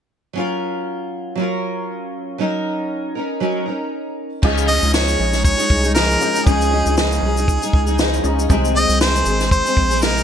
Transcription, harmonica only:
0, 0, Header, 1, 2, 480
1, 0, Start_track
1, 0, Key_signature, -5, "major"
1, 0, Tempo, 508906
1, 332, Time_signature, 4, 2, 24, 8
1, 9651, End_track
2, 0, Start_track
2, 0, Title_t, "Harmonica"
2, 0, Program_c, 0, 22
2, 4413, Note_on_c, 0, 75, 97
2, 4638, Note_off_c, 0, 75, 0
2, 4656, Note_on_c, 0, 73, 88
2, 5103, Note_off_c, 0, 73, 0
2, 5134, Note_on_c, 0, 73, 96
2, 5581, Note_off_c, 0, 73, 0
2, 5609, Note_on_c, 0, 70, 95
2, 6091, Note_on_c, 0, 68, 89
2, 6105, Note_off_c, 0, 70, 0
2, 6570, Note_off_c, 0, 68, 0
2, 6575, Note_on_c, 0, 68, 71
2, 7736, Note_off_c, 0, 68, 0
2, 8266, Note_on_c, 0, 75, 110
2, 8483, Note_off_c, 0, 75, 0
2, 8499, Note_on_c, 0, 72, 94
2, 8942, Note_off_c, 0, 72, 0
2, 8977, Note_on_c, 0, 72, 98
2, 9453, Note_on_c, 0, 70, 96
2, 9467, Note_off_c, 0, 72, 0
2, 9651, Note_off_c, 0, 70, 0
2, 9651, End_track
0, 0, End_of_file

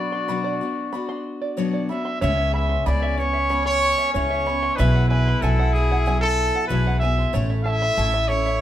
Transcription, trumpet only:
0, 0, Header, 1, 2, 480
1, 0, Start_track
1, 0, Tempo, 641026
1, 1659, Time_signature, 4, 2, 24, 8
1, 6447, End_track
2, 0, Start_track
2, 0, Title_t, "Trumpet"
2, 0, Program_c, 0, 56
2, 0, Note_on_c, 0, 74, 84
2, 1155, Note_off_c, 0, 74, 0
2, 1424, Note_on_c, 0, 76, 85
2, 1645, Note_off_c, 0, 76, 0
2, 1661, Note_on_c, 0, 76, 105
2, 1884, Note_off_c, 0, 76, 0
2, 1905, Note_on_c, 0, 76, 96
2, 2146, Note_on_c, 0, 74, 98
2, 2157, Note_off_c, 0, 76, 0
2, 2380, Note_on_c, 0, 73, 117
2, 2392, Note_off_c, 0, 74, 0
2, 2730, Note_off_c, 0, 73, 0
2, 2735, Note_on_c, 0, 73, 127
2, 3072, Note_off_c, 0, 73, 0
2, 3097, Note_on_c, 0, 73, 102
2, 3566, Note_on_c, 0, 71, 104
2, 3577, Note_off_c, 0, 73, 0
2, 3805, Note_off_c, 0, 71, 0
2, 3810, Note_on_c, 0, 71, 96
2, 4058, Note_on_c, 0, 69, 104
2, 4069, Note_off_c, 0, 71, 0
2, 4292, Note_on_c, 0, 68, 103
2, 4303, Note_off_c, 0, 69, 0
2, 4645, Note_off_c, 0, 68, 0
2, 4650, Note_on_c, 0, 69, 119
2, 4987, Note_off_c, 0, 69, 0
2, 4994, Note_on_c, 0, 71, 100
2, 5227, Note_off_c, 0, 71, 0
2, 5239, Note_on_c, 0, 76, 105
2, 5503, Note_off_c, 0, 76, 0
2, 5722, Note_on_c, 0, 76, 122
2, 6199, Note_on_c, 0, 73, 112
2, 6211, Note_off_c, 0, 76, 0
2, 6447, Note_off_c, 0, 73, 0
2, 6447, End_track
0, 0, End_of_file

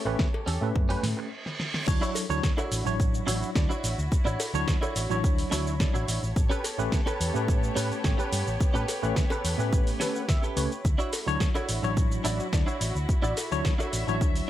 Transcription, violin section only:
0, 0, Header, 1, 2, 480
1, 0, Start_track
1, 0, Key_signature, 2, "major"
1, 0, Tempo, 560748
1, 1604, Time_signature, 4, 2, 24, 8
1, 12411, End_track
2, 0, Start_track
2, 0, Title_t, "Violin section"
2, 0, Program_c, 0, 48
2, 0, Note_on_c, 0, 59, 83
2, 0, Note_on_c, 0, 67, 76
2, 0, Note_on_c, 0, 69, 80
2, 0, Note_on_c, 0, 73, 97
2, 1089, Note_off_c, 0, 73, 0
2, 1090, Note_off_c, 0, 67, 0
2, 1090, Note_off_c, 0, 69, 0
2, 1091, Note_off_c, 0, 59, 0
2, 1605, Note_on_c, 0, 66, 75
2, 1608, Note_on_c, 0, 64, 78
2, 3524, Note_on_c, 0, 73, 99
2, 5410, Note_off_c, 0, 66, 0
2, 5412, Note_off_c, 0, 64, 0
2, 5441, Note_on_c, 0, 67, 83
2, 5442, Note_on_c, 0, 69, 82
2, 5444, Note_on_c, 0, 59, 87
2, 7344, Note_off_c, 0, 69, 0
2, 7365, Note_on_c, 0, 71, 81
2, 9248, Note_off_c, 0, 67, 0
2, 9250, Note_off_c, 0, 59, 0
2, 9250, Note_off_c, 0, 73, 0
2, 9265, Note_off_c, 0, 71, 0
2, 9287, Note_on_c, 0, 64, 83
2, 9288, Note_on_c, 0, 66, 78
2, 11201, Note_on_c, 0, 76, 91
2, 12411, Note_off_c, 0, 64, 0
2, 12411, Note_off_c, 0, 66, 0
2, 12411, Note_off_c, 0, 76, 0
2, 12411, End_track
0, 0, End_of_file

